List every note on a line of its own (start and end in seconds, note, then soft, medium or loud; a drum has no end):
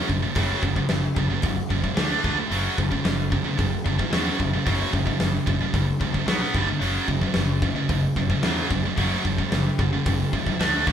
0.08 0.26 F#1 medium
0.08 0.21 F#2 medium
0.08 0.21 C#3 medium
0.08 kick medium
0.22 0.34 F#2 medium
0.22 0.35 C#3 medium
0.35 0.52 F#1 loud
0.35 0.61 F#2 medium
0.35 0.61 C#3 medium
0.35 0.62 F#3 loud
0.35 kick loud
0.35 open hi-hat medium
0.62 0.79 F#1 medium
0.62 0.74 F#2 medium
0.62 0.74 C#3 medium
0.62 kick medium
0.76 0.88 F#2 medium
0.76 0.89 C#3 medium
0.76 kick medium
0.89 1.07 F#1 medium
0.89 1.14 F#2 medium
0.89 1.14 C#3 medium
0.89 snare loud
0.89 open hi-hat medium
1.15 1.33 F#1 loud
1.15 1.29 F#2 medium
1.15 1.28 C#3 medium
1.15 kick medium
1.29 1.41 F#2 medium
1.29 1.42 C#3 medium
1.42 1.60 F#1 medium
1.42 1.67 F#2 medium
1.42 1.68 C#3 medium
1.42 kick loud
1.42 open hi-hat medium
1.69 1.87 F#1 medium
1.69 1.82 F#2 medium
1.69 1.81 C#3 medium
1.69 kick medium
1.82 1.97 F#2 medium
1.82 1.95 C#3 medium
1.82 kick medium
1.95 2.14 D2 loud
1.95 2.20 D3 medium
1.95 2.21 A3 medium
1.95 2.22 D4 medium
1.95 snare loud
1.95 open hi-hat medium
2.22 2.40 D2 medium
2.22 2.35 D3 medium
2.22 2.35 A3 medium
2.22 2.35 D4 loud
2.22 kick loud
2.37 2.50 D3 medium
2.37 2.51 A3 medium
2.50 2.67 F#1 medium
2.50 2.76 F#2 loud
2.50 2.76 C#3 loud
2.50 2.76 F#3 loud
2.50 open hi-hat medium
2.78 2.94 F#1 medium
2.78 2.90 F#2 medium
2.78 2.89 C#3 medium
2.78 kick medium
2.90 3.03 F#2 medium
2.90 3.03 C#3 medium
2.90 kick medium
3.04 3.37 F#1 loud
3.04 3.29 F#2 medium
3.04 3.29 C#3 medium
3.04 snare loud
3.04 open hi-hat medium
3.30 3.44 F#2 medium
3.30 3.43 C#3 loud
3.30 kick medium
3.45 3.56 F#2 medium
3.45 3.56 C#3 medium
3.57 3.75 F#1 medium
3.57 3.82 F#2 medium
3.57 3.82 C#3 medium
3.57 kick loud
3.57 open hi-hat medium
3.85 4.02 F#1 medium
3.85 3.98 F#2 medium
3.85 3.97 C#3 medium
3.85 kick medium
3.98 4.09 F#2 medium
3.98 4.10 C#3 medium
3.98 kick medium
4.10 4.29 E2 medium
4.10 4.37 F#2 medium
4.10 4.37 C#3 medium
4.10 4.37 F#3 medium
4.10 snare loud
4.10 open hi-hat medium
4.39 4.56 F#1 loud
4.39 4.53 F#2 medium
4.39 4.53 C#3 medium
4.39 kick medium
4.54 4.64 F#2 medium
4.54 4.65 C#3 medium
4.65 4.82 F#1 loud
4.65 4.91 F#2 medium
4.65 4.91 C#3 medium
4.65 4.92 F#3 medium
4.65 kick loud
4.65 open hi-hat medium
4.93 5.10 F#1 medium
4.93 5.07 F#2 medium
4.93 5.06 C#3 medium
4.93 kick medium
5.07 5.19 F#2 medium
5.07 5.20 C#3 medium
5.07 kick medium
5.20 5.36 F#1 medium
5.20 5.44 F#2 medium
5.20 5.45 C#3 medium
5.20 snare loud
5.20 open hi-hat medium
5.47 5.63 F#1 loud
5.47 5.60 F#2 medium
5.47 5.59 C#3 medium
5.47 kick loud
5.61 5.73 F#2 medium
5.61 5.73 C#3 medium
5.74 5.90 F#1 medium
5.74 5.98 F#2 medium
5.74 5.98 C#3 medium
5.74 kick loud
5.74 open hi-hat medium
6.00 6.17 C#2 medium
6.00 6.12 F#2 medium
6.00 6.12 C#3 medium
6.00 kick medium
6.13 6.27 F#2 medium
6.13 6.26 C#3 medium
6.13 kick medium
6.26 6.43 B1 loud
6.26 6.52 B2 medium
6.26 6.52 F#3 medium
6.26 6.53 B3 medium
6.26 snare loud
6.26 open hi-hat medium
6.53 6.71 G1 medium
6.53 6.66 G2 medium
6.53 6.65 D3 medium
6.53 6.66 G3 medium
6.53 kick loud
6.67 6.79 G2 medium
6.67 6.79 D3 medium
6.79 6.97 F#1 medium
6.79 7.06 F#2 medium
6.79 7.06 C#3 medium
6.79 7.06 F#3 loud
6.79 open hi-hat medium
7.08 7.25 F#1 medium
7.08 7.21 F#2 medium
7.08 7.20 C#3 medium
7.08 kick medium
7.22 7.35 F#2 medium
7.22 7.35 C#3 medium
7.22 kick medium
7.34 7.68 F#1 medium
7.34 7.60 F#2 medium
7.34 7.60 C#3 medium
7.34 snare loud
7.34 open hi-hat medium
7.62 7.74 F#2 medium
7.62 7.74 C#3 medium
7.62 kick loud
7.75 7.88 F#2 medium
7.75 7.88 C#3 medium
7.89 8.06 F#1 medium
7.89 8.13 F#2 medium
7.89 8.13 C#3 medium
7.89 kick loud
7.89 open hi-hat medium
8.16 8.33 F#1 medium
8.16 8.29 F#2 medium
8.16 8.29 C#3 medium
8.16 kick medium
8.30 8.41 F#2 medium
8.30 8.42 C#3 medium
8.30 kick medium
8.43 8.59 E2 medium
8.43 8.68 F#2 medium
8.43 8.69 C#3 loud
8.43 8.69 F#3 loud
8.43 snare loud
8.43 open hi-hat medium
8.70 8.87 F#1 medium
8.70 8.82 F#2 medium
8.70 8.82 C#3 medium
8.70 kick loud
8.83 8.95 F#2 medium
8.83 8.96 C#3 medium
8.97 9.14 F#1 medium
8.97 9.22 F#2 medium
8.97 9.22 C#3 medium
8.97 9.23 F#3 medium
8.97 kick loud
8.97 open hi-hat medium
9.24 9.41 F#1 medium
9.24 9.37 F#2 medium
9.24 9.36 C#3 medium
9.24 kick medium
9.38 9.49 F#2 medium
9.38 9.50 C#3 medium
9.38 kick medium
9.50 9.68 F#1 medium
9.50 9.75 F#2 medium
9.50 9.75 C#3 medium
9.50 snare medium
9.50 open hi-hat soft
9.78 9.95 F#1 loud
9.78 9.91 F#2 medium
9.78 9.91 C#3 medium
9.78 kick loud
9.92 10.05 F#2 medium
9.92 10.05 C#3 medium
10.06 10.22 F#1 loud
10.06 10.30 F#2 medium
10.06 10.30 C#3 medium
10.06 kick loud
10.06 open hi-hat medium
10.32 10.49 C#2 medium
10.32 10.45 F#2 medium
10.32 10.45 C#3 medium
10.32 kick medium
10.46 10.60 F#2 medium
10.46 10.59 C#3 medium
10.46 kick medium
10.59 10.86 D2 medium
10.59 10.85 D3 medium
10.59 10.85 A3 loud
10.59 10.85 D4 medium
10.59 snare loud
10.59 open hi-hat medium
10.86 10.92 D2 medium
10.86 10.92 D3 medium
10.86 10.92 A3 loud
10.86 10.92 D4 loud
10.86 kick loud